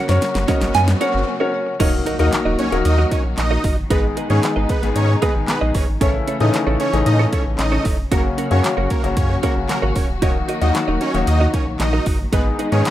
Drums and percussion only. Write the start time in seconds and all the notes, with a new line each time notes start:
0.09 snare, closed hi-hat
0.22 snare, closed hi-hat
0.35 snare
0.48 kick, snare, closed hi-hat
0.61 snare, closed hi-hat
0.75 snare, closed hi-hat
0.88 snare
1.01 closed hi-hat
1.80 kick, closed hi-hat, crash
2.06 closed hi-hat
2.19 closed hi-hat
2.33 snare, clap, closed hi-hat
2.59 closed hi-hat
2.72 closed hi-hat
2.85 closed hi-hat
3.12 kick, closed hi-hat
3.38 snare, clap, closed hi-hat
3.64 kick, open hi-hat
3.90 kick, closed hi-hat
4.17 closed hi-hat
4.30 closed hi-hat
4.43 snare, clap, closed hi-hat
4.69 kick, closed hi-hat
4.83 closed hi-hat
4.96 closed hi-hat
5.22 kick, closed hi-hat
5.48 snare, clap, closed hi-hat
5.75 kick, open hi-hat
6.01 kick, closed hi-hat
6.28 closed hi-hat
6.40 closed hi-hat
6.54 snare, clap, closed hi-hat
6.80 closed hi-hat
6.93 closed hi-hat
7.06 closed hi-hat
7.33 kick, closed hi-hat
7.59 snare, clap, closed hi-hat
7.85 kick, open hi-hat
8.12 kick, closed hi-hat
8.38 closed hi-hat
8.51 closed hi-hat
8.64 snare, clap, closed hi-hat
8.90 kick, closed hi-hat
9.04 closed hi-hat
9.17 kick, closed hi-hat
9.43 kick, closed hi-hat
9.69 snare, clap, closed hi-hat
9.96 kick, open hi-hat
10.22 kick, closed hi-hat
10.49 closed hi-hat
10.61 closed hi-hat
10.75 snare, clap, closed hi-hat
11.01 closed hi-hat
11.14 closed hi-hat
11.27 closed hi-hat
11.54 kick, closed hi-hat
11.80 snare, clap, closed hi-hat
12.06 kick, open hi-hat
12.33 kick, closed hi-hat
12.59 closed hi-hat
12.72 closed hi-hat
12.85 snare, clap, closed hi-hat